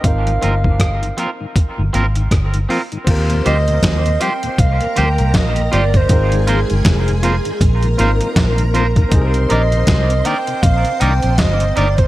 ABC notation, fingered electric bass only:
X:1
M:4/4
L:1/16
Q:"Swing 16ths" 1/4=79
K:Eb
V:1 name="Fingered electric bass" clef=bass
A,,,2 G,,,4 z3 G,,, A,,,2 G,,,2 z2 | E,,2 D,,2 E,,2 z2 C,, z D,, C,, B,,,2 G,,,2 | A,,,3 G,,, F,,,3 z B,,,2 A,,, z B,,,4 | C,,2 B,,,2 C,,2 z2 B,,, z C,, B,,, G,,,2 G,,,2 |]